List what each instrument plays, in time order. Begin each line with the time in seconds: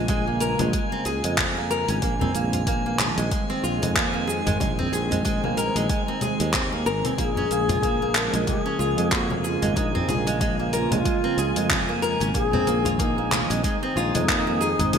Already playing: fretless electric bass A#1, analog synth pad C#3 G#3 A#3 F4, synth texture G#5
0.08 nylon-string guitar G#3, kick, open hi-hat, shaker
0.27 nylon-string guitar A#3
0.40 nylon-string guitar A#4, open hi-hat, shaker
0.59 fretless electric bass A#1, nylon-string guitar G#3, open hi-hat, low conga, shaker
0.73 nylon-string guitar G#3, kick, open hi-hat, shaker
0.92 nylon-string guitar C4
1.05 fretless electric bass C#2, nylon-string guitar G#4, open hi-hat, shaker
1.24 fretless electric bass F2, nylon-string guitar G#3, open hi-hat, shaker
1.38 nylon-string guitar C4, kick, clap, open hi-hat, low conga, shaker
1.57 nylon-string guitar A#3
1.70 nylon-string guitar A#4, shaker
1.88 fretless electric bass G#1, nylon-string guitar C#4, open hi-hat, shaker
2.02 fretless electric bass A#1, analog synth pad D#3 C4, nylon-string guitar A#3, kick, open hi-hat, shaker
2.21 nylon-string guitar C4, low conga, udu
2.34 fretless electric bass A#1, nylon-string guitar A#3, open hi-hat, shaker
2.53 nylon-string guitar F4, open hi-hat, udu, shaker
2.67 nylon-string guitar A#3, kick, open hi-hat, shaker
2.86 nylon-string guitar A#3
2.99 nylon-string guitar F3, clap, open hi-hat, low conga, shaker
3.18 fretless electric bass A#1, nylon-string guitar G#3, open hi-hat, shaker
3.31 nylon-string guitar G#3, kick, open hi-hat, shaker
3.50 nylon-string guitar C4
3.64 fretless electric bass A#1, nylon-string guitar F4, shaker
3.82 fretless electric bass F2, nylon-string guitar G#3, open hi-hat, low conga, shaker
3.96 nylon-string guitar A#3, kick, clap, open hi-hat, shaker
4.14 nylon-string guitar A#3
4.27 nylon-string guitar G#4, shaker
4.46 fretless electric bass G#1, nylon-string guitar G#3, open hi-hat, udu, shaker
4.60 fretless electric bass A#1, nylon-string guitar G#3, kick, open hi-hat, low conga, shaker
4.79 nylon-string guitar C4, udu
4.92 fretless electric bass A#1, nylon-string guitar G#4, open hi-hat, shaker
5.11 nylon-string guitar G#3, open hi-hat, udu, shaker
5.25 nylon-string guitar G#3, kick, open hi-hat, shaker
5.44 nylon-string guitar A#3, low conga
5.57 nylon-string guitar A#4, open hi-hat, shaker
5.75 fretless electric bass A#1, nylon-string guitar G#3, open hi-hat, shaker
5.89 nylon-string guitar G#3, kick, open hi-hat, shaker
6.08 nylon-string guitar C4
6.21 nylon-string guitar G#4, open hi-hat, low conga, shaker
6.40 fretless electric bass D#2, nylon-string guitar G#3, open hi-hat, shaker
6.53 nylon-string guitar C4, kick, clap, open hi-hat, shaker
6.72 nylon-string guitar A#3
6.86 fretless electric bass G#1, nylon-string guitar A#4, shaker
7.05 nylon-string guitar C4, open hi-hat, low conga, shaker
7.18 fretless electric bass A#1, analog synth pad C#3 F3 A#3, nylon-string guitar A#3, bansuri G#4, kick, open hi-hat, shaker
7.36 nylon-string guitar C#4, udu
7.51 fretless electric bass A#1, nylon-string guitar A#3, open hi-hat, shaker
7.69 nylon-string guitar F4, open hi-hat, udu, low conga, shaker
7.83 nylon-string guitar A#3, kick, open hi-hat, shaker
8.02 nylon-string guitar A#3
8.15 nylon-string guitar F3, bansuri A#4, clap, open hi-hat, shaker
8.33 fretless electric bass A#1, nylon-string guitar G#3, open hi-hat, shaker
8.47 nylon-string guitar G#3, bansuri G4, kick, open hi-hat, low conga, shaker
8.61 bansuri G#4
8.66 nylon-string guitar C#4
8.79 fretless electric bass C#2, nylon-string guitar F4, shaker
8.98 fretless electric bass F2, nylon-string guitar G#3, open hi-hat, shaker
9.11 nylon-string guitar A#3, bansuri F#4, kick, clap, open hi-hat, shaker
9.30 nylon-string guitar A#3, low conga
9.44 bansuri F4, nylon-string guitar G#4, shaker
9.62 fretless electric bass G#1, nylon-string guitar G#3, open hi-hat, udu, shaker
9.75 fretless electric bass A#1, nylon-string guitar G#3, bansuri D#4, kick, open hi-hat, shaker
9.95 nylon-string guitar C4, udu
10.08 fretless electric bass A#1, nylon-string guitar G#4, open hi-hat, low conga, shaker
10.27 nylon-string guitar G#3, open hi-hat, shaker
10.41 nylon-string guitar G#3, kick, open hi-hat, shaker
10.59 nylon-string guitar A#3
10.73 bansuri F4, nylon-string guitar A#4, open hi-hat, shaker
10.91 fretless electric bass A#1, nylon-string guitar G#3, open hi-hat, low conga, shaker
11.05 nylon-string guitar G#3, kick, open hi-hat, shaker
11.24 nylon-string guitar C4
11.37 fretless electric bass C#2, nylon-string guitar G#4, open hi-hat, shaker
11.56 fretless electric bass F2, nylon-string guitar G#3, open hi-hat, shaker
11.70 nylon-string guitar C4, kick, clap, open hi-hat, low conga, shaker
11.89 nylon-string guitar A#3
12.02 nylon-string guitar A#4, shaker
12.20 fretless electric bass G#1, nylon-string guitar C#4, open hi-hat, shaker
12.34 fretless electric bass A#1, analog synth pad D#3 G#3 C4, nylon-string guitar A#3, bansuri G#4, kick, open hi-hat, shaker
12.53 nylon-string guitar C4, udu, low conga
12.67 fretless electric bass A#1, nylon-string guitar A#3, open hi-hat, shaker
12.85 nylon-string guitar F4, open hi-hat, udu, shaker
12.99 nylon-string guitar A#3, bansuri D#4, kick, open hi-hat, shaker
13.18 nylon-string guitar A#3
13.32 nylon-string guitar F3, bansuri D#4, clap, open hi-hat, low conga, shaker
13.50 fretless electric bass A#1, nylon-string guitar G#3, open hi-hat, shaker
13.64 nylon-string guitar G#3, kick, open hi-hat, shaker
13.83 nylon-string guitar C4
13.96 fretless electric bass A#1, nylon-string guitar F4, shaker
14.15 fretless electric bass F2, nylon-string guitar G#3, open hi-hat, low conga, shaker
14.28 nylon-string guitar A#3, kick, clap, open hi-hat, shaker
14.47 nylon-string guitar A#3
14.61 nylon-string guitar G#4, shaker
14.79 fretless electric bass G#1, nylon-string guitar G#3, open hi-hat, udu, shaker
14.93 fretless electric bass A#1, nylon-string guitar G#3, open hi-hat, low conga, shaker